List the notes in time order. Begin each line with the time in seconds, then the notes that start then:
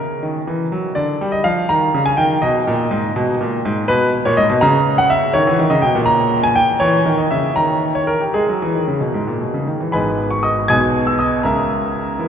Already playing: A#4
0.23 D#3
0.47 E3
0.72 F#3
0.95 D3 D5
1.21 G3
1.32 D#5
1.44 F3 F5
1.69 D#3 A#5
1.94 C#3
2.06 G#5
2.17 D#3 G5
2.42 B2 D#5
2.67 A#2
2.91 G#2
3.16 B2
3.41 A#2
3.65 G#2
3.88 B2 B4
4.25 A#2 C#5
4.37 G#2 D#5
4.50 B2
4.61 C#3 A#5
4.98 F#5
5.10 E5
5.34 D#3 C#5
5.47 E3
5.59 D#3
5.70 C#3 D#5
5.82 B2 G5
5.95 A#2
6.06 A#5
6.43 G#5
6.55 G5
6.80 E3 C#5
7.06 D#3
7.18 D#5
7.31 C#3 E5
7.56 D#3 A#5
7.95 C#5
8.07 A#4
8.21 G4
8.34 G#3 G#4
8.49 F#3
8.62 E3
8.75 D#3
8.88 C#3
9.01 B2
9.14 G#2
9.27 A#2
9.41 B2
9.54 C#3
9.67 D#3
9.80 E3
9.92 G#1 G#2 G#3 B3 D#4 B4 G#5 B5
10.31 C#6
10.43 D#5 D#6
10.68 B1 B2 G#3 B3 D#4 G#5 D#6 G#6
11.07 E6
11.19 D#5 D#6
11.43 C#2 C#3 A#4 E5 A#5
12.19 E3 A#3 E4